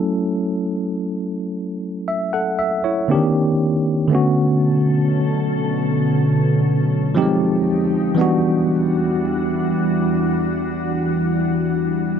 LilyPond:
<<
  \new Staff \with { instrumentName = "Tine electric piano" } { \time 4/4 \key e \dorian \tempo 4 = 59 r2 e''16 <a' fis''>16 e''16 <e' cis''>8 r8. | r1 | r1 | }
  \new Staff \with { instrumentName = "Tine electric piano" } { \time 4/4 \key e \dorian <fis a cis' e' a'>2. <d ees bes c' d' g'>4 | <d a b cis' fis'>2. <f g aes c' ees' g'>4 | <e g b d' fis'>1 | }
  \new Staff \with { instrumentName = "Ambient pad" } { \clef bass \time 4/4 \key e \dorian r1 | <b, d fis cis' a'>2. r4 | <e, e g d' fis'>1 | }
>>